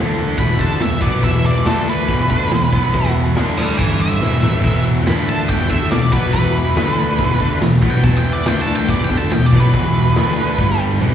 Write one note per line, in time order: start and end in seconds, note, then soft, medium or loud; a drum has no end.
0.00 0.34 D2 medium
0.00 0.37 D3 medium
0.00 0.37 A3 loud
0.00 0.38 D4 loud
0.38 0.57 E1 medium
0.38 0.58 E2 medium
0.38 0.59 B2 medium
0.38 0.59 E3 medium
0.38 0.59 B5 loud
0.38 kick loud
0.38 open hi-hat medium
0.59 0.79 D2 loud
0.59 0.80 D3 medium
0.59 0.80 A3 medium
0.59 0.80 D4 medium
0.59 0.81 A5 medium
0.59 kick medium
0.80 1.00 E1 medium
0.80 0.97 E2 medium
0.80 0.98 B2 medium
0.80 1.02 E5 medium
0.80 snare loud
0.80 open hi-hat medium
1.01 1.22 B1 medium
1.01 1.22 B2 medium
1.01 1.22 F#3 medium
1.01 1.22 B3 loud
1.01 1.23 D5 medium
1.01 kick medium
1.22 1.63 E1 medium
1.22 1.65 E2 medium
1.22 1.64 B2 medium
1.22 1.65 E3 loud
1.22 1.44 E5 medium
1.22 kick loud
1.22 open hi-hat medium
1.46 1.66 D5 medium
1.64 2.05 D2 medium
1.64 2.07 D3 medium
1.64 2.07 A3 loud
1.64 2.08 D4 loud
1.64 1.87 A4 loud
1.64 snare loud
1.64 open hi-hat soft
1.89 3.12 B4 loud
2.08 2.28 E1 medium
2.08 2.29 E2 medium
2.08 2.29 B2 medium
2.08 2.30 E3 loud
2.08 kick medium
2.08 open hi-hat soft
2.30 2.49 D2 medium
2.30 2.50 D3 medium
2.30 2.51 A3 medium
2.30 2.51 D4 medium
2.30 kick loud
2.51 2.71 E1 medium
2.51 2.68 E2 medium
2.51 2.68 B2 medium
2.51 snare loud
2.51 open hi-hat medium
2.72 2.92 B1 medium
2.72 2.93 B2 medium
2.72 2.93 F#3 loud
2.72 2.93 B3 loud
2.72 kick medium
2.93 3.33 E1 loud
2.93 3.35 E2 medium
2.93 3.35 B2 medium
2.93 3.36 E3 loud
2.93 kick loud
2.93 open hi-hat medium
3.35 3.75 D2 medium
3.35 3.78 D3 medium
3.35 3.78 A3 medium
3.35 3.79 D4 medium
3.35 snare medium
3.35 open hi-hat medium
3.57 3.79 D5 medium
3.57 3.78 G5 medium
3.78 4.18 G1 medium
3.78 4.20 G2 medium
3.78 4.21 D3 medium
3.78 4.21 G3 medium
3.78 3.98 B4 medium
3.78 3.99 E5 medium
3.78 kick medium
3.78 open hi-hat medium
4.02 4.83 E5 medium
4.21 4.41 E1 medium
4.21 4.42 E2 medium
4.21 4.42 B2 medium
4.21 4.42 E3 loud
4.21 snare medium
4.42 4.62 A1 medium
4.42 4.63 A2 medium
4.42 4.64 E3 medium
4.42 4.64 A3 loud
4.42 mid tom medium
4.54 floor tom medium
4.63 5.04 E1 medium
4.63 5.05 E2 medium
4.63 5.06 B2 loud
4.63 5.07 E3 loud
4.63 kick loud
4.63 open hi-hat medium
4.63 splash medium
5.06 5.46 D2 medium
5.06 5.48 D3 medium
5.06 5.48 A3 medium
5.06 5.49 D4 loud
5.06 5.27 B5 loud
5.06 snare loud
5.06 open hi-hat medium
5.29 5.49 A5 medium
5.49 5.69 E1 medium
5.49 5.69 E2 medium
5.49 5.69 B2 medium
5.49 5.70 E3 loud
5.49 5.70 G5 loud
5.49 kick loud
5.49 open hi-hat soft
5.70 5.90 D2 medium
5.70 5.90 D3 medium
5.70 5.91 A3 medium
5.70 5.91 D4 medium
5.70 5.90 E5 medium
5.70 kick medium
5.90 6.11 E1 medium
5.90 6.08 E2 medium
5.90 6.08 B2 medium
5.90 6.12 D5 medium
5.90 snare loud
5.90 open hi-hat medium
6.12 6.32 B1 medium
6.12 6.33 B2 loud
6.12 6.33 F#3 medium
6.12 6.34 B3 medium
6.12 6.32 B4 medium
6.12 kick loud
6.33 6.73 E1 medium
6.33 6.75 E2 medium
6.33 6.75 B2 medium
6.33 6.76 E3 medium
6.33 7.57 B4 loud
6.33 kick loud
6.33 open hi-hat medium
6.75 7.15 D2 medium
6.75 7.18 D3 medium
6.75 7.18 A3 medium
6.75 7.18 D4 loud
6.75 snare loud
6.75 open hi-hat medium
7.19 7.38 E1 medium
7.19 7.39 E2 medium
7.19 7.40 B2 medium
7.19 7.40 E3 medium
7.19 kick medium
7.19 open hi-hat medium
7.40 7.60 D2 loud
7.40 7.61 D3 medium
7.40 7.61 A3 medium
7.40 7.61 D4 medium
7.40 kick medium
7.60 7.81 E1 medium
7.60 7.78 E2 medium
7.60 7.78 B2 medium
7.60 snare loud
7.60 open hi-hat medium
7.83 8.02 B1 medium
7.83 8.03 B2 medium
7.83 8.03 F#3 loud
7.83 8.04 B3 loud
7.83 kick medium
7.90 8.04 G5 medium
8.04 8.43 E1 medium
8.04 8.45 E2 medium
8.04 8.46 B2 loud
8.04 8.46 E3 loud
8.04 8.17 A5 medium
8.04 kick loud
8.04 open hi-hat medium
8.18 8.32 G5 medium
8.33 8.46 D5 medium
8.46 8.85 D2 medium
8.46 8.88 D3 medium
8.46 8.88 A3 medium
8.46 8.89 D4 medium
8.46 8.61 G5 loud
8.46 snare loud
8.46 open hi-hat medium
8.61 8.75 A5 medium
8.76 8.89 G5 medium
8.88 9.08 E1 medium
8.88 9.09 E2 medium
8.88 9.09 B2 medium
8.88 9.10 E3 loud
8.88 9.03 D5 medium
8.88 kick loud
8.88 open hi-hat medium
9.04 9.17 G5 loud
9.10 9.30 D2 loud
9.10 9.30 D3 medium
9.10 9.31 A3 medium
9.10 9.31 D4 medium
9.10 kick loud
9.17 9.31 A5 medium
9.31 9.51 E1 medium
9.31 9.48 E2 medium
9.31 9.48 B2 medium
9.31 9.45 G5 medium
9.31 snare loud
9.31 open hi-hat medium
9.46 9.60 D5 medium
9.53 9.72 B1 medium
9.53 9.73 B2 medium
9.53 9.74 F#3 medium
9.53 9.74 B3 loud
9.53 kick loud
9.60 10.83 B4 loud
9.74 10.13 E1 medium
9.74 10.16 E2 loud
9.74 10.16 B2 medium
9.74 10.16 E3 loud
9.74 kick loud
9.74 open hi-hat medium
10.16 10.55 D2 medium
10.16 10.57 D3 medium
10.16 10.58 A3 medium
10.16 10.59 D4 loud
10.16 snare loud
10.16 open hi-hat medium
10.58 10.98 G1 medium
10.58 11.00 G2 medium
10.58 11.00 D3 loud
10.58 11.01 G3 medium
10.58 kick loud
10.58 open hi-hat medium
11.00 11.14 E1 medium
11.00 11.14 E2 medium
11.00 11.14 B2 medium
11.00 11.14 E3 loud
11.00 high tom medium